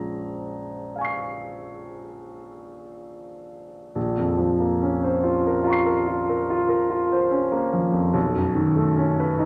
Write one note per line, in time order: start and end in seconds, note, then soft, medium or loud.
0.00 3.90 A#1 soft
0.00 3.91 F3 soft
0.00 3.91 G#3 soft
0.00 3.92 C#4 soft
0.00 3.92 C5 soft
0.00 3.48 A#5 medium
0.96 3.93 F5 soft
0.96 3.94 G#5 soft
1.01 3.96 C#6 soft
1.01 3.97 C7 soft
3.95 8.11 A#1 soft
4.17 4.52 F2 soft
4.37 4.73 F3 soft
4.60 4.95 A#3 soft
4.82 5.16 C#4 soft
5.04 5.37 C5 soft
5.23 5.57 F4 soft
5.47 5.79 A#4 soft
5.63 5.98 F4 soft
5.63 8.09 F5 soft
5.63 8.11 A#5 soft
5.70 8.13 C#6 soft
5.70 8.14 C7 soft
5.86 6.19 A#4 soft
6.07 6.40 F4 soft
6.29 6.61 A#4 soft
6.50 6.82 F4 soft
6.69 7.01 A#4 soft
6.90 7.23 F4 soft
7.12 7.44 C5 soft
7.31 7.64 C#4 soft
7.52 7.85 A#3 soft
7.73 8.07 F3 soft
7.93 8.14 F2 soft
8.14 9.45 B1 medium
8.35 8.68 F#2 soft
8.55 8.88 D#3 soft
8.76 9.09 A3 medium
8.96 9.29 C#4 medium
9.20 9.45 B4 soft
9.39 9.45 D#4 soft